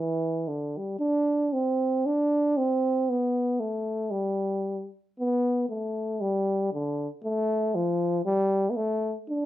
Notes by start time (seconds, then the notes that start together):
Already playing: E3
0.48 D3
0.77 G3
0.99 D4
1.53 C4
2.06 D4
2.57 C4
3.10 B3
3.60 A3
4.11 G3
5.19 B3
5.69 A3
6.21 G3
6.73 D3
7.24 A3
7.75 F3
8.25 G3
8.70 B3
8.76 A3
9.29 D4